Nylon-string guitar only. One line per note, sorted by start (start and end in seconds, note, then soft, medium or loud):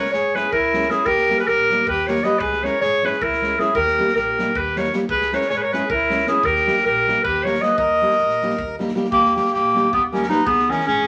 0.35 0.45 G#3 medium
0.35 0.46 C#4 medium
0.35 0.46 E4 medium
0.35 0.46 G#4 medium
0.73 0.83 G#3 medium
0.73 0.83 C#4 medium
0.73 0.84 E4 medium
0.73 0.84 G#4 medium
0.89 0.99 G#3 medium
0.89 0.99 C#4 medium
0.89 1.00 E4 medium
0.89 1.00 G#4 medium
1.29 1.39 G3 medium
1.29 1.40 A#3 medium
1.29 1.40 D#4 medium
1.29 1.40 G4 medium
1.70 1.80 G3 medium
1.70 1.81 A#3 medium
1.70 1.81 D#4 medium
1.70 1.81 G4 medium
2.08 2.17 G3 medium
2.08 2.18 A#3 medium
2.08 2.18 D#4 medium
2.08 2.18 G4 medium
2.24 2.33 G3 medium
2.24 2.34 A#3 medium
2.24 2.34 D#4 medium
2.24 2.34 G4 medium
2.62 2.73 G#3 medium
2.62 2.74 C#4 soft
2.62 2.74 E4 medium
2.62 2.74 G#4 medium
3.03 3.14 G#3 medium
3.03 3.14 C#4 medium
3.03 3.14 E4 medium
3.03 3.14 G#4 medium
3.42 3.51 G#3 medium
3.42 3.52 C#4 medium
3.42 3.52 E4 medium
3.42 3.52 G#4 medium
3.59 3.68 G#3 medium
3.59 3.68 C#4 medium
3.59 3.69 E4 medium
3.59 3.69 G#4 medium
3.98 4.08 G3 medium
3.98 4.09 A#3 medium
3.98 4.09 D#4 medium
3.98 4.10 G4 medium
4.39 4.49 G3 medium
4.39 4.49 A#3 medium
4.39 4.49 D#4 medium
4.39 4.49 G4 medium
4.76 4.86 G3 medium
4.76 4.86 A#3 medium
4.76 4.86 D#4 medium
4.76 4.87 G4 medium
4.93 5.03 G3 medium
4.93 5.03 A#3 medium
4.93 5.03 D#4 medium
4.93 5.03 G4 medium
5.31 5.42 G#3 medium
5.31 5.42 C#4 soft
5.31 5.43 E4 medium
5.31 5.43 G#4 medium
5.73 5.83 G#3 medium
5.73 5.83 C#4 medium
5.73 5.84 E4 medium
5.73 5.84 G#4 medium
6.10 6.20 G#3 medium
6.10 6.20 C#4 medium
6.10 6.21 E4 medium
6.10 6.21 G#4 medium
6.27 6.36 G#3 medium
6.27 6.37 C#4 medium
6.27 6.37 E4 medium
6.27 6.38 G#4 medium
6.66 6.76 G3 medium
6.66 6.77 A#3 soft
6.66 6.77 D#4 medium
6.66 6.77 G4 medium
7.07 7.17 G3 medium
7.07 7.18 A#3 medium
7.07 7.18 D#4 medium
7.07 7.18 G4 medium
7.44 7.54 G3 medium
7.44 7.54 A#3 medium
7.44 7.55 D#4 medium
7.44 7.55 G4 medium
7.61 7.71 G3 medium
7.61 7.71 A#3 medium
7.61 7.72 D#4 medium
7.61 7.72 G4 medium
8.01 8.11 G3 medium
8.01 8.12 A#3 soft
8.01 8.12 D#4 medium
8.01 8.12 G4 medium
8.42 8.52 G3 medium
8.42 8.52 A#3 medium
8.42 8.53 D#4 medium
8.42 8.53 G4 medium
8.79 8.89 G3 medium
8.79 8.89 A#3 medium
8.79 8.89 D#4 medium
8.79 8.90 G4 medium
8.95 9.05 G3 medium
8.95 9.05 A#3 medium
8.95 9.05 D#4 medium
8.95 9.06 G4 medium
9.35 9.45 G3 medium
9.35 9.45 A#3 medium
9.35 9.46 D#4 soft
9.35 9.46 G4 medium
9.74 9.85 G3 medium
9.74 9.85 A#3 medium
9.74 9.86 D#4 medium
9.74 9.86 G4 medium
10.12 10.23 G3 medium
10.12 10.23 A#3 medium
10.12 10.23 D#4 medium
10.12 10.24 G4 medium
10.28 10.39 G3 medium
10.28 10.39 A#3 medium
10.28 10.40 D#4 medium
10.28 10.40 G4 medium
10.69 10.79 E3 medium
10.69 10.80 G#3 medium
10.69 10.80 C#4 medium
10.69 10.80 E4 medium